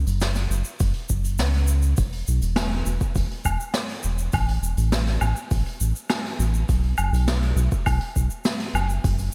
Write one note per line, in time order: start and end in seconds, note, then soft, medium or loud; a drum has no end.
0.06 0.47 F#1 medium
0.06 open hi-hat soft
0.06 shaker soft
0.21 snare medium
0.21 open hi-hat medium
0.21 shaker medium
0.35 snare soft
0.35 open hi-hat medium
0.35 shaker soft
0.50 0.63 F#1 loud
0.50 shaker medium
0.64 shaker medium
0.80 0.93 F#1 medium
0.80 kick loud
0.80 open hi-hat medium
0.80 shaker medium
0.94 open hi-hat medium
1.09 1.40 F#1 medium
1.09 kick medium
1.09 shaker medium
1.24 open hi-hat soft
1.24 shaker soft
1.38 1.94 C#2 medium
1.38 snare medium
1.38 open hi-hat medium
1.38 shaker medium
1.53 open hi-hat soft
1.67 shaker medium
1.82 shaker soft
1.97 2.23 E1 medium
1.97 kick loud
1.97 open hi-hat medium
1.97 shaker medium
2.12 open hi-hat medium
2.27 2.40 B1 medium
2.27 shaker medium
2.42 2.83 E1 medium
2.42 open hi-hat soft
2.42 shaker soft
2.56 snare medium
2.56 open hi-hat medium
2.56 low woodblock medium
2.56 shaker medium
2.72 open hi-hat medium
2.86 2.99 E1 loud
2.86 shaker medium
3.01 kick loud
3.01 shaker medium
3.15 3.28 E1 medium
3.15 kick loud
3.15 open hi-hat medium
3.15 shaker medium
3.31 open hi-hat medium
3.45 3.58 E1 medium
3.45 kick medium
3.45 low woodblock medium
3.45 shaker medium
3.60 shaker medium
3.74 snare medium
3.74 open hi-hat medium
3.74 shaker medium
3.89 open hi-hat medium
4.03 4.29 E1 medium
4.03 shaker medium
4.18 shaker medium
4.33 4.58 A1 medium
4.33 kick loud
4.33 open hi-hat medium
4.33 low woodblock medium
4.33 shaker medium
4.48 open hi-hat medium
4.62 4.75 E1 medium
4.62 shaker medium
4.77 5.18 A1 medium
4.77 open hi-hat soft
4.77 shaker soft
4.92 snare loud
4.92 open hi-hat medium
4.92 shaker medium
5.07 snare soft
5.07 open hi-hat medium
5.21 5.34 A1 loud
5.21 low woodblock medium
5.21 shaker medium
5.36 shaker soft
5.51 5.64 A1 medium
5.51 kick loud
5.51 open hi-hat medium
5.51 shaker medium
5.66 open hi-hat medium
5.80 5.93 A1 medium
5.80 shaker medium
5.96 shaker soft
6.10 snare medium
6.10 open hi-hat medium
6.10 low woodblock medium
6.10 shaker medium
6.25 open hi-hat medium
6.39 6.64 A1 medium
6.39 shaker medium
6.54 shaker soft
6.69 6.94 B1 medium
6.69 kick loud
6.69 open hi-hat medium
6.69 shaker medium
6.83 open hi-hat medium
6.98 7.11 F#1 medium
6.98 low woodblock medium
6.98 shaker medium
7.12 7.53 B1 medium
7.12 open hi-hat medium
7.12 shaker soft
7.28 snare loud
7.28 open hi-hat medium
7.28 shaker medium
7.42 open hi-hat medium
7.56 7.69 B1 loud
7.56 shaker medium
7.72 kick loud
7.72 shaker soft
7.86 7.99 B1 medium
7.86 kick loud
7.86 open hi-hat medium
7.86 low woodblock medium
7.86 shaker medium
8.00 open hi-hat medium
8.16 8.29 B1 medium
8.16 kick medium
8.16 shaker medium
8.30 shaker soft
8.44 snare loud
8.44 open hi-hat medium
8.44 shaker soft
8.60 open hi-hat medium
8.74 8.99 F#1 medium
8.74 low woodblock medium
8.74 shaker medium
8.89 shaker soft
9.04 9.29 F#1 medium
9.04 kick loud
9.04 open hi-hat medium
9.04 shaker medium
9.19 open hi-hat medium
9.19 shaker soft